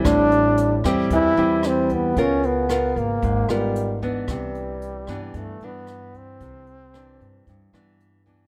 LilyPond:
<<
  \new Staff \with { instrumentName = "Nylon-string guitar" } { \time 4/4 \key c \major \tempo 4 = 113 << { <g bis e'>4. <g c' e'>4 <g c' e'>4. | <b f' bes'>4 <b f' bes'>4 r8 <b f' bes'>4 <e b d'>8~ | <e b d'>4. <e b d'>4 <e d'>4.~ | <e d'>8 r8 <e d'>4. <e b d'>4 <e b d'>8 | } \\ { a,2 e2 | des2 aes,2 | c2 g,2 | c2 g,2 | } >> }
  \new Staff \with { instrumentName = "Trombone" } { \time 4/4 \key c \major d'4. r8 e'4 c'8 b8 | des'8 b4 bes4 g4 r8 | g2 a8 b4 c'8~ | c'2~ c'8 r4. | }
  \new Staff \with { instrumentName = "Upright bass" } { \clef bass \time 4/4 \key c \major a,,4. e,8 e,8 e,4. | des,4. aes,,8 aes,,8 aes,,4. | c,4. g,8 g,8 r4. | c,4. g,8 g,8 r4. | }
  \new DrumStaff \with { instrumentName = "Drums" } \drummode { \time 4/4 <hh bd ss>8 hh8 hh8 <hh bd ss>8 <hh bd>8 hh8 <hh ss>8 <hh bd>8 | <hh bd>8 hh8 <hh ss>8 <hh bd>8 <hh bd>8 <hh ss>8 hh8 <hh bd>8 | <hh bd ss>8 hh8 hh8 <hh bd ss>8 <hh bd>8 hh8 <hh ss>8 <hh bd>8 | <hh bd>8 hh8 <hh ss>8 <hh bd>8 <hh bd>8 <hh ss>8 hh8 <hh bd>8 | }
>>